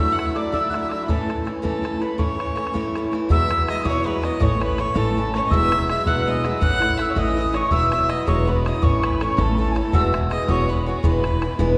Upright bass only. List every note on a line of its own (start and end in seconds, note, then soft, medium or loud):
3.30 3.73 E2 medium
3.85 4.28 E2 medium
4.40 4.83 A1 medium
4.96 5.39 A1 loud
5.51 5.94 E1 medium
6.06 6.49 E1 medium
6.62 7.04 A1 medium
7.17 7.60 A1 medium
7.72 8.15 E1 medium
8.28 8.70 E1 loud
8.83 9.25 A1 loud
9.38 9.81 A1 loud
9.93 10.36 E1 loud
10.49 10.91 E1 medium
11.04 11.46 E1 medium
11.59 11.78 E1 loud